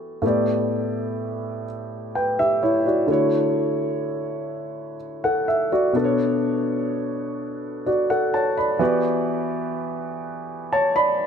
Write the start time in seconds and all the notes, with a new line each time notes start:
Already playing: E3 B3 F#4 G4 A4 D5
0.22 A2 A3 B3 G4
0.27 D5
2.15 B4 G5
2.39 G4 E5
2.63 E4 C#5
2.86 F#4 D5
3.07 D3 A3 E4 F#4
3.12 C#5
5.24 A4 F#5
5.48 E5
5.72 F#4 D5
5.93 B2 B3 D4 A4
5.98 B4
6.05 C#5
7.86 F#4 D5
8.10 A4 F#5
8.34 C#5 A5
8.57 D5 B5
8.79 E3 B3 F#4 G4
8.84 D5
10.73 C#5 A5
10.96 D5 B5